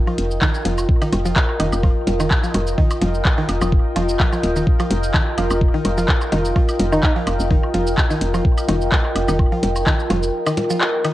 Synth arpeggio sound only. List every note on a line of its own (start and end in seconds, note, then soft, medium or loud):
0.07 0.15 F3 medium
0.42 0.48 D#3 loud
0.65 0.74 F3 medium
1.02 1.07 D#3 loud
1.25 1.33 F3 medium
1.60 1.66 D#3 loud
1.84 1.92 F3 medium
2.20 2.25 D#3 loud
2.44 2.51 F3 medium
2.78 2.84 D#3 loud
3.02 3.10 F3 medium
3.38 3.43 D#3 loud
3.62 3.69 F3 medium
3.96 4.02 F3 loud
4.20 4.26 F3 loud
4.32 4.37 F3 medium
4.56 4.64 D#3 medium
4.80 4.87 F3 medium
5.14 5.20 D#3 loud
5.38 5.47 F3 medium
5.74 5.79 D#3 loud
5.98 6.05 F3 medium
6.32 6.38 D#3 loud
6.56 6.65 F3 medium
6.92 6.97 D#3 loud
7.16 7.23 F3 medium
7.50 7.56 D#3 loud
7.74 7.83 F3 medium
8.10 8.15 D#3 loud
8.34 8.42 F3 medium
8.68 8.74 D#3 loud
8.92 9.01 F3 medium
9.29 9.34 D#3 loud
9.52 9.60 F3 medium
9.87 9.93 D#3 loud
10.10 10.19 F3 medium
10.47 10.52 D#3 loud
10.70 10.78 F3 medium
11.05 11.11 D#3 loud